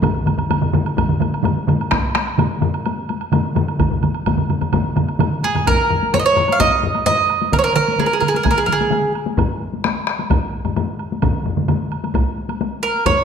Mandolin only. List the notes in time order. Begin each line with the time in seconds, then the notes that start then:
5.44 G#4
5.67 A#4
6.14 C#5
6.19 D#5
6.26 C#5
6.52 F5
6.60 D#5
7.06 D#5
7.53 A#4
7.59 C#5
7.64 A#4
7.76 A#4
7.99 G#4
8.06 A#4
8.13 G#4
8.20 A#4
8.28 G#4
8.36 A#4
8.43 G#4
8.51 A#4
8.58 G#4
8.66 A#4
8.72 G#4
12.83 A#4
13.06 C#5